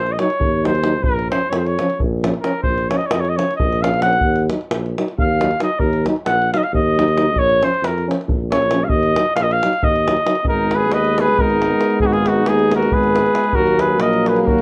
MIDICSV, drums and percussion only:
0, 0, Header, 1, 2, 480
1, 0, Start_track
1, 0, Key_signature, -6, "minor"
1, 0, Tempo, 451807
1, 1113, Time_signature, 7, 3, 24, 8
1, 6864, Tempo, 442152
1, 11204, Key_signature, -7, "minor"
1, 15718, End_track
2, 0, Start_track
2, 0, Title_t, "Davul"
2, 70, Note_on_c, 9, 37, 30
2, 176, Note_off_c, 9, 37, 0
2, 200, Note_on_c, 9, 37, 65
2, 307, Note_off_c, 9, 37, 0
2, 320, Note_on_c, 9, 37, 31
2, 426, Note_off_c, 9, 37, 0
2, 433, Note_on_c, 9, 43, 92
2, 539, Note_off_c, 9, 43, 0
2, 694, Note_on_c, 9, 37, 63
2, 797, Note_off_c, 9, 37, 0
2, 797, Note_on_c, 9, 37, 23
2, 888, Note_off_c, 9, 37, 0
2, 888, Note_on_c, 9, 37, 65
2, 994, Note_off_c, 9, 37, 0
2, 1101, Note_on_c, 9, 43, 95
2, 1207, Note_off_c, 9, 43, 0
2, 1263, Note_on_c, 9, 37, 30
2, 1369, Note_off_c, 9, 37, 0
2, 1400, Note_on_c, 9, 37, 70
2, 1503, Note_off_c, 9, 37, 0
2, 1503, Note_on_c, 9, 37, 20
2, 1609, Note_off_c, 9, 37, 0
2, 1622, Note_on_c, 9, 37, 70
2, 1728, Note_off_c, 9, 37, 0
2, 1769, Note_on_c, 9, 37, 30
2, 1875, Note_off_c, 9, 37, 0
2, 1899, Note_on_c, 9, 37, 67
2, 2005, Note_off_c, 9, 37, 0
2, 2016, Note_on_c, 9, 37, 29
2, 2122, Note_off_c, 9, 37, 0
2, 2124, Note_on_c, 9, 43, 88
2, 2231, Note_off_c, 9, 43, 0
2, 2379, Note_on_c, 9, 37, 72
2, 2484, Note_off_c, 9, 37, 0
2, 2484, Note_on_c, 9, 37, 23
2, 2590, Note_off_c, 9, 37, 0
2, 2593, Note_on_c, 9, 37, 68
2, 2699, Note_off_c, 9, 37, 0
2, 2799, Note_on_c, 9, 43, 85
2, 2906, Note_off_c, 9, 43, 0
2, 2951, Note_on_c, 9, 37, 31
2, 3057, Note_off_c, 9, 37, 0
2, 3089, Note_on_c, 9, 37, 70
2, 3195, Note_off_c, 9, 37, 0
2, 3197, Note_on_c, 9, 37, 22
2, 3303, Note_off_c, 9, 37, 0
2, 3303, Note_on_c, 9, 37, 87
2, 3409, Note_off_c, 9, 37, 0
2, 3450, Note_on_c, 9, 37, 28
2, 3556, Note_off_c, 9, 37, 0
2, 3599, Note_on_c, 9, 37, 69
2, 3705, Note_off_c, 9, 37, 0
2, 3725, Note_on_c, 9, 37, 29
2, 3821, Note_on_c, 9, 43, 93
2, 3832, Note_off_c, 9, 37, 0
2, 3927, Note_off_c, 9, 43, 0
2, 3958, Note_on_c, 9, 37, 28
2, 4064, Note_off_c, 9, 37, 0
2, 4080, Note_on_c, 9, 37, 75
2, 4183, Note_off_c, 9, 37, 0
2, 4183, Note_on_c, 9, 37, 24
2, 4271, Note_off_c, 9, 37, 0
2, 4271, Note_on_c, 9, 37, 70
2, 4377, Note_off_c, 9, 37, 0
2, 4384, Note_on_c, 9, 37, 25
2, 4472, Note_on_c, 9, 43, 85
2, 4491, Note_off_c, 9, 37, 0
2, 4578, Note_off_c, 9, 43, 0
2, 4629, Note_on_c, 9, 37, 32
2, 4735, Note_off_c, 9, 37, 0
2, 4776, Note_on_c, 9, 37, 67
2, 4883, Note_off_c, 9, 37, 0
2, 4897, Note_on_c, 9, 37, 24
2, 5003, Note_off_c, 9, 37, 0
2, 5005, Note_on_c, 9, 37, 82
2, 5111, Note_off_c, 9, 37, 0
2, 5162, Note_on_c, 9, 37, 29
2, 5268, Note_off_c, 9, 37, 0
2, 5293, Note_on_c, 9, 37, 66
2, 5399, Note_off_c, 9, 37, 0
2, 5400, Note_on_c, 9, 37, 29
2, 5506, Note_off_c, 9, 37, 0
2, 5509, Note_on_c, 9, 43, 91
2, 5615, Note_off_c, 9, 43, 0
2, 5747, Note_on_c, 9, 37, 65
2, 5852, Note_off_c, 9, 37, 0
2, 5852, Note_on_c, 9, 37, 25
2, 5953, Note_off_c, 9, 37, 0
2, 5953, Note_on_c, 9, 37, 65
2, 6060, Note_off_c, 9, 37, 0
2, 6157, Note_on_c, 9, 43, 81
2, 6263, Note_off_c, 9, 43, 0
2, 6301, Note_on_c, 9, 37, 33
2, 6407, Note_off_c, 9, 37, 0
2, 6436, Note_on_c, 9, 37, 63
2, 6542, Note_off_c, 9, 37, 0
2, 6547, Note_on_c, 9, 37, 20
2, 6653, Note_off_c, 9, 37, 0
2, 6653, Note_on_c, 9, 37, 76
2, 6759, Note_off_c, 9, 37, 0
2, 6820, Note_on_c, 9, 37, 27
2, 6927, Note_off_c, 9, 37, 0
2, 6947, Note_on_c, 9, 37, 65
2, 7052, Note_off_c, 9, 37, 0
2, 7052, Note_on_c, 9, 37, 24
2, 7161, Note_off_c, 9, 37, 0
2, 7173, Note_on_c, 9, 43, 84
2, 7281, Note_off_c, 9, 43, 0
2, 7437, Note_on_c, 9, 37, 65
2, 7538, Note_off_c, 9, 37, 0
2, 7538, Note_on_c, 9, 37, 24
2, 7640, Note_off_c, 9, 37, 0
2, 7640, Note_on_c, 9, 37, 63
2, 7748, Note_off_c, 9, 37, 0
2, 7838, Note_on_c, 9, 43, 76
2, 7947, Note_off_c, 9, 43, 0
2, 7986, Note_on_c, 9, 37, 28
2, 8094, Note_off_c, 9, 37, 0
2, 8129, Note_on_c, 9, 37, 58
2, 8238, Note_off_c, 9, 37, 0
2, 8256, Note_on_c, 9, 37, 20
2, 8364, Note_off_c, 9, 37, 0
2, 8364, Note_on_c, 9, 37, 67
2, 8472, Note_off_c, 9, 37, 0
2, 8513, Note_on_c, 9, 37, 28
2, 8622, Note_off_c, 9, 37, 0
2, 8654, Note_on_c, 9, 37, 60
2, 8763, Note_off_c, 9, 37, 0
2, 8764, Note_on_c, 9, 37, 28
2, 8850, Note_on_c, 9, 43, 94
2, 8873, Note_off_c, 9, 37, 0
2, 8958, Note_off_c, 9, 43, 0
2, 9100, Note_on_c, 9, 37, 74
2, 9208, Note_off_c, 9, 37, 0
2, 9208, Note_on_c, 9, 37, 23
2, 9303, Note_off_c, 9, 37, 0
2, 9303, Note_on_c, 9, 37, 68
2, 9411, Note_off_c, 9, 37, 0
2, 9507, Note_on_c, 9, 43, 87
2, 9615, Note_off_c, 9, 43, 0
2, 9653, Note_on_c, 9, 37, 28
2, 9762, Note_off_c, 9, 37, 0
2, 9798, Note_on_c, 9, 37, 70
2, 9904, Note_off_c, 9, 37, 0
2, 9904, Note_on_c, 9, 37, 19
2, 10013, Note_off_c, 9, 37, 0
2, 10017, Note_on_c, 9, 37, 73
2, 10126, Note_off_c, 9, 37, 0
2, 10177, Note_on_c, 9, 37, 29
2, 10285, Note_off_c, 9, 37, 0
2, 10304, Note_on_c, 9, 37, 67
2, 10412, Note_off_c, 9, 37, 0
2, 10520, Note_on_c, 9, 43, 97
2, 10628, Note_off_c, 9, 43, 0
2, 10661, Note_on_c, 9, 37, 29
2, 10770, Note_off_c, 9, 37, 0
2, 10789, Note_on_c, 9, 37, 75
2, 10887, Note_off_c, 9, 37, 0
2, 10887, Note_on_c, 9, 37, 25
2, 10994, Note_off_c, 9, 37, 0
2, 10994, Note_on_c, 9, 37, 70
2, 11090, Note_off_c, 9, 37, 0
2, 11090, Note_on_c, 9, 37, 31
2, 11190, Note_on_c, 9, 43, 86
2, 11198, Note_off_c, 9, 37, 0
2, 11299, Note_off_c, 9, 43, 0
2, 11477, Note_on_c, 9, 37, 63
2, 11585, Note_off_c, 9, 37, 0
2, 11700, Note_on_c, 9, 37, 66
2, 11808, Note_off_c, 9, 37, 0
2, 11841, Note_on_c, 9, 37, 28
2, 11949, Note_off_c, 9, 37, 0
2, 11986, Note_on_c, 9, 37, 69
2, 12092, Note_off_c, 9, 37, 0
2, 12092, Note_on_c, 9, 37, 23
2, 12201, Note_off_c, 9, 37, 0
2, 12209, Note_on_c, 9, 43, 81
2, 12317, Note_off_c, 9, 43, 0
2, 12333, Note_on_c, 9, 37, 23
2, 12442, Note_off_c, 9, 37, 0
2, 12462, Note_on_c, 9, 37, 61
2, 12558, Note_off_c, 9, 37, 0
2, 12558, Note_on_c, 9, 37, 23
2, 12667, Note_off_c, 9, 37, 0
2, 12667, Note_on_c, 9, 37, 62
2, 12772, Note_off_c, 9, 37, 0
2, 12772, Note_on_c, 9, 37, 25
2, 12876, Note_on_c, 9, 43, 82
2, 12880, Note_off_c, 9, 37, 0
2, 12985, Note_off_c, 9, 43, 0
2, 13022, Note_on_c, 9, 37, 28
2, 13130, Note_off_c, 9, 37, 0
2, 13157, Note_on_c, 9, 37, 58
2, 13266, Note_off_c, 9, 37, 0
2, 13380, Note_on_c, 9, 37, 65
2, 13488, Note_off_c, 9, 37, 0
2, 13519, Note_on_c, 9, 37, 27
2, 13627, Note_off_c, 9, 37, 0
2, 13653, Note_on_c, 9, 37, 67
2, 13762, Note_off_c, 9, 37, 0
2, 13774, Note_on_c, 9, 37, 27
2, 13873, Note_on_c, 9, 43, 86
2, 13883, Note_off_c, 9, 37, 0
2, 13982, Note_off_c, 9, 43, 0
2, 14001, Note_on_c, 9, 37, 24
2, 14109, Note_off_c, 9, 37, 0
2, 14132, Note_on_c, 9, 37, 65
2, 14240, Note_off_c, 9, 37, 0
2, 14247, Note_on_c, 9, 37, 24
2, 14343, Note_off_c, 9, 37, 0
2, 14343, Note_on_c, 9, 37, 66
2, 14439, Note_off_c, 9, 37, 0
2, 14439, Note_on_c, 9, 37, 28
2, 14535, Note_on_c, 9, 43, 81
2, 14548, Note_off_c, 9, 37, 0
2, 14644, Note_off_c, 9, 43, 0
2, 14693, Note_on_c, 9, 37, 27
2, 14802, Note_off_c, 9, 37, 0
2, 14823, Note_on_c, 9, 37, 68
2, 14931, Note_off_c, 9, 37, 0
2, 15044, Note_on_c, 9, 37, 72
2, 15153, Note_off_c, 9, 37, 0
2, 15193, Note_on_c, 9, 37, 28
2, 15302, Note_off_c, 9, 37, 0
2, 15334, Note_on_c, 9, 37, 57
2, 15442, Note_off_c, 9, 37, 0
2, 15444, Note_on_c, 9, 37, 29
2, 15553, Note_off_c, 9, 37, 0
2, 15564, Note_on_c, 9, 43, 88
2, 15673, Note_off_c, 9, 43, 0
2, 15684, Note_on_c, 9, 37, 27
2, 15718, Note_off_c, 9, 37, 0
2, 15718, End_track
0, 0, End_of_file